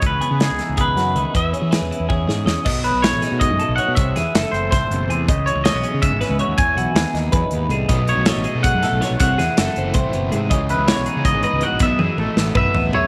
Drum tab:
CC |-------|-------|x------|-------|
HH |xxxxxxx|xxxx---|-xxxxxx|xxxxxxx|
SD |--oo-o-|--o--oo|--oo---|-oo-o--|
T1 |-------|----o--|-------|-------|
T2 |-------|-------|-------|-------|
FT |-------|-------|-------|-------|
BD |o---o--|o---o--|o---o--|o---o--|

CC |-------|-------|-------|-------|
HH |xxxxxxx|xxxxxxx|xxxxxxx|xxxxxxx|
SD |--o--o-|--oo---|--o--oo|-oo----|
T1 |-------|-------|-------|-------|
T2 |-------|-------|-------|-------|
FT |-------|-------|-------|-------|
BD |o---o--|o---o--|o---o--|o---o--|

CC |-------|-------|
HH |xxxxxxx|x------|
SD |--o----|---o---|
T1 |-------|-oo----|
T2 |-------|----o--|
FT |-------|-----oo|
BD |o---o--|o---o--|